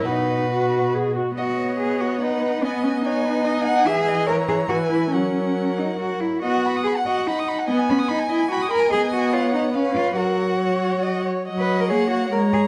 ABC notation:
X:1
M:3/4
L:1/16
Q:1/4=143
K:B
V:1 name="Violin"
B8 z4 | d8 f4 | g4 g8- | g4 a4 g4 |
f8- f2 z2 | f12 | g12 | [K:F#] g4 f4 e4 |
f8- f2 z2 | f8 a4 |]
V:2 name="Violin"
F8- F2 z2 | d2 c6 B4 | d4 c2 B2 d2 f2 | e2 d2 c4 B4 |
A8- A2 z2 | d f b d' b f d f b d' b f | d g b d' b g d g b d' b g | [K:F#] d4 c4 B4 |
A4 c4 d2 c2 | d4 c4 c4 |]
V:3 name="Cello"
B,,8- B,,2 z2 | F4 G2 F2 D4 | B,2 C2 D8 | G4 A2 G2 F2 E2 |
C6 D2 F2 E2 | F4 G2 F2 D4 | B,2 C2 D2 E2 F2 A2 | [K:F#] G2 F2 E2 D2 C2 E2 |
F8- F2 z2 | z B2 A G2 F2 A2 G2 |]
V:4 name="Viola"
D4 F4 G2 F2 | B,12 | B,12 | E,8 E,4 |
F,8- F,2 z2 | B,4 z8 | B,4 z8 | [K:F#] B,8 C4 |
F,8- F,2 z2 | F,4 A,4 G,4 |]